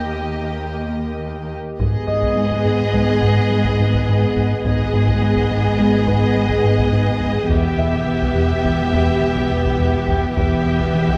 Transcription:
Already playing: D#2 A#3 G4 A#4 D#5 G6
1.79 G#1 G#2 B3 G#4 B4 D#5, taiko
2.07 G#2 D#5 D#6
2.23 taiko
2.36 G#3
2.51 taiko
2.66 G#2
2.94 G#3, taiko
3.22 G#2, taiko
3.51 G#3
3.64 taiko
3.80 G#2
3.94 taiko
4.09 G#2
4.36 G#2, taiko
4.65 G#1 G#2 B3 G#4 B4 D#5, taiko
4.94 G#2
5.07 taiko
5.22 G#3
5.36 taiko
5.51 G#2
5.79 G#3, taiko
6.07 G#2 B4 B5, taiko
6.36 G#3
6.49 taiko
6.65 G#2
6.79 taiko
6.93 G#2
7.21 G#2, taiko
7.49 E1 E2 B3 G4 B4 E5, taiko
7.78 E2 E5
7.93 taiko
8.07 E3
8.22 taiko
8.36 E2
8.64 E3, taiko
8.93 E2 G4 G5, taiko
9.21 E3
9.37 taiko
9.51 E2
9.65 taiko
9.79 E2
10.08 E2, taiko
10.35 E1 E2 B3 G4 B4 E5, taiko
10.66 E2
10.80 taiko
10.95 E3
11.09 taiko

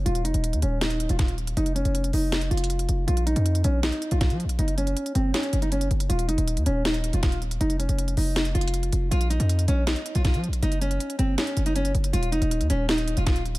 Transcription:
0.06 D#1 F4, closed hi-hat
0.15 closed hi-hat
0.24 F1 D#4, closed hi-hat
0.34 D#1, closed hi-hat
0.44 closed hi-hat
0.53 D#2, closed hi-hat
0.62 D#1 C#4, closed hi-hat
0.81 D#4, snare, closed hi-hat
0.90 closed hi-hat
1.00 closed hi-hat
1.09 D#1 F4, closed hi-hat
1.19 F4, kick, snare, closed hi-hat
1.28 closed hi-hat
1.38 closed hi-hat
1.47 closed hi-hat
1.57 F1 D#4, closed hi-hat
1.66 closed hi-hat
1.75 C#4, closed hi-hat
1.85 F1, closed hi-hat
1.95 closed hi-hat
2.04 closed hi-hat
2.13 F1 D#4, open hi-hat
2.32 snare, closed hi-hat
2.41 closed hi-hat
2.51 F1 F4, closed hi-hat
2.57 closed hi-hat
2.64 closed hi-hat
2.70 closed hi-hat
2.79 closed hi-hat
2.89 F1, closed hi-hat
3.07 A#1 F4, closed hi-hat
3.17 closed hi-hat
3.26 D#4, closed hi-hat
3.36 F2, closed hi-hat
3.46 closed hi-hat
3.55 closed hi-hat
3.64 A#1 C#4, closed hi-hat
3.83 D#4, snare, closed hi-hat
3.92 closed hi-hat
4.02 closed hi-hat
4.11 A#1 F4, closed hi-hat
4.21 F4, kick, snare, closed hi-hat
4.30 F3, closed hi-hat
4.40 closed hi-hat
4.45 A#1
4.49 closed hi-hat
4.59 F#1 D#4, closed hi-hat
4.68 closed hi-hat
4.78 C#4, closed hi-hat
4.87 closed hi-hat
4.97 closed hi-hat
5.06 closed hi-hat
5.15 F#1 C4, closed hi-hat
5.34 C#4, snare, closed hi-hat
5.43 closed hi-hat
5.53 F#1, closed hi-hat
5.62 D#4, closed hi-hat
5.72 C#4, closed hi-hat
5.81 closed hi-hat
5.91 F#1, closed hi-hat
6.00 closed hi-hat
6.09 D#1 F4, closed hi-hat
6.19 closed hi-hat
6.28 F1 D#4, closed hi-hat
6.38 D#1, closed hi-hat
6.48 closed hi-hat
6.57 D#2, closed hi-hat
6.66 D#1 C#4, closed hi-hat
6.85 D#4, snare, closed hi-hat
6.94 closed hi-hat
7.04 closed hi-hat
7.13 D#1 F4, closed hi-hat
7.23 F4, kick, snare, closed hi-hat
7.32 closed hi-hat
7.42 closed hi-hat
7.51 closed hi-hat
7.61 F1 D#4, closed hi-hat
7.70 closed hi-hat
7.79 C#4, closed hi-hat
7.89 F1, closed hi-hat
7.99 closed hi-hat
8.08 closed hi-hat
8.17 F1 D#4, open hi-hat
8.36 snare, closed hi-hat
8.45 closed hi-hat
8.55 F1 F4, closed hi-hat
8.61 closed hi-hat
8.68 closed hi-hat
8.74 closed hi-hat
8.83 closed hi-hat
8.92 F1, closed hi-hat
9.11 A#1 F4, closed hi-hat
9.21 closed hi-hat
9.30 D#4, closed hi-hat
9.40 F2, closed hi-hat
9.49 closed hi-hat
9.59 closed hi-hat
9.68 A#1 C#4, closed hi-hat
9.87 D#4, snare, closed hi-hat
9.96 closed hi-hat
10.06 closed hi-hat
10.15 A#1 F4, closed hi-hat
10.25 F4, kick, snare, closed hi-hat
10.34 F3, closed hi-hat
10.44 closed hi-hat
10.48 A#1
10.53 closed hi-hat
10.62 F#1 D#4, closed hi-hat
10.72 closed hi-hat
10.81 C#4, closed hi-hat
10.91 closed hi-hat
11.00 closed hi-hat
11.10 closed hi-hat
11.19 F#1 C4, closed hi-hat
11.38 C#4, snare, closed hi-hat
11.47 closed hi-hat
11.57 F#1, closed hi-hat
11.66 D#4, closed hi-hat
11.76 C#4, closed hi-hat
11.85 closed hi-hat
11.95 F#1, closed hi-hat
12.04 closed hi-hat
12.13 D#1 F4, closed hi-hat
12.23 closed hi-hat
12.32 F1 D#4, closed hi-hat
12.42 D#1, closed hi-hat
12.51 closed hi-hat
12.61 D#2, closed hi-hat
12.70 D#1 C#4, closed hi-hat
12.89 D#4, snare, closed hi-hat
12.98 closed hi-hat
13.08 closed hi-hat
13.17 D#1 F4, closed hi-hat
13.26 F4, kick, snare, closed hi-hat
13.36 closed hi-hat
13.46 closed hi-hat
13.55 closed hi-hat

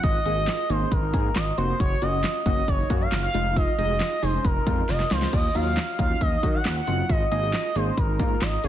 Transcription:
0.03 G#1 F4 D#5, kick, closed hi-hat
0.26 G#1 A#3 D#4 G#4 D#5, closed hi-hat
0.37 F#4
0.48 F4, snare, clap, closed hi-hat
0.70 G#1 A#3 D#4 G#4 C5, closed hi-hat
0.81 C#4
0.92 G#1 A#4, kick, closed hi-hat
1.03 D#4
1.14 G#2 A#3 D#4 G#4, kick, closed hi-hat
1.36 G#1 F4 D#5, snare, clap, closed hi-hat
1.58 F1 A#3 C4 D#4 F#4 C5, closed hi-hat
1.80 F#1 F#4 C#5, kick, closed hi-hat
2.02 F#1 A#3 C#4 F4 F#4 D#5, closed hi-hat
2.13 F#4
2.24 F4, snare, clap, closed hi-hat
2.46 F#1 A#3 C#4 D#4 F#4 D#5, kick, closed hi-hat
2.57 C#4
2.68 F#1 C#5, kick, closed hi-hat
2.79 D#4
2.90 F#2 A#3 C#4 F#4, kick, closed hi-hat
3.01 F5
3.12 F#1 F4, snare, clap, closed hi-hat
3.23 F5
3.34 F1 G#3 D#4 F4, closed hi-hat
3.56 F4 D#5, kick, closed hi-hat
3.78 F1 G#3 D#4 G#4 D#5, closed hi-hat
3.89 F#4
4.00 F4, snare, clap, closed hi-hat
4.23 F1 G#3 D#4 G#4 C5, open hi-hat
4.34 C#4
4.45 F1 A#4, kick, closed hi-hat
4.56 D#4
4.67 F2 G#3 D#4 F4, kick, closed hi-hat
4.89 F1 F4 D#5, snare, closed hi-hat
5.00 snare
5.11 C#2 G#3 C4 D#4 F4 C5, snare, open hi-hat
5.22 snare
5.33 D#2 F4 D#5, kick, crash
5.55 D#2 F#3 D#4 F4 F5, closed hi-hat
5.66 F#4
5.77 F4, snare, clap, closed hi-hat
5.99 D#2 F#3 D#4 F4 F5, kick, closed hi-hat
6.10 C#4
6.21 D#2 D#5, kick, closed hi-hat
6.32 D#4
6.43 D#3 F#3 D#4 F#4, kick, closed hi-hat
6.54 F#5
6.65 D#2 F4, snare, clap, closed hi-hat
6.76 F#5
6.87 F#1 F#3 C4 D#4 F4, closed hi-hat
7.09 G#1 F4 D#5, kick, closed hi-hat
7.32 G#1 A#3 D#4 G#4 D#5, closed hi-hat
7.43 F#4
7.53 F4, snare, clap, closed hi-hat
7.76 G#1 A#3 D#4 G#4 C5, closed hi-hat
7.87 C#4
7.98 G#1 A#4, kick, closed hi-hat
8.09 D#4
8.20 G#2 A#3 D#4 F4, kick, closed hi-hat
8.42 G#1 F4 D#5, snare, clap, closed hi-hat
8.64 F1 A#3 C4 D#4 G#4 C5, closed hi-hat

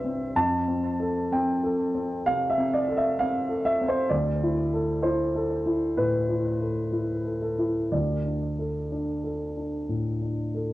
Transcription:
Already playing: G2 C4 B4 C5 E5
0.04 C4
0.35 F2 A5
0.68 C4
1.00 A4
1.32 C4 G5
1.63 A4
1.94 C4
2.26 C3 F5
2.50 E5
2.58 C4
2.73 D5
2.88 A4
2.97 E5
3.19 C4 F5
3.49 A4
3.65 E5
3.81 C4
3.88 C5
4.09 D2 D5
4.43 E4
4.74 A4
5.03 E4 C5
5.35 A4
5.66 E4
5.97 A2 B4
6.29 E4
6.61 A4
6.92 E4
7.25 A4
7.42 A4
7.58 E4
7.92 D2 D5
8.26 D4
8.59 A4
8.92 D4
9.24 A4
9.57 D4
9.89 A2
10.22 D4
10.55 A4

